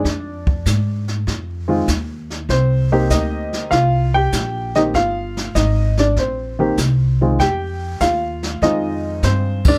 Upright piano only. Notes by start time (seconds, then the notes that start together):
Already playing: D4 D5
1.68 D#3 G#3 C4 F4
2.50 C4 C5
2.92 A#3 C4 D#4 G4
3.11 D#4 D#5
3.71 F4 F5
4.14 G4 G5
4.76 D#3 A#3 C4 D#4 G4 D#5
4.95 F4 F5
5.55 D#4 D#5
5.99 D4 D5
6.19 C4 C5
6.59 D#3 A#3 C4 G4
7.21 D#3 G#3 C4 F4
7.40 G4 G5
8.01 F4 F5
8.63 D#3 G#3 C4 D#4 F4 D#5
9.24 C4 C5
9.68 D4 D5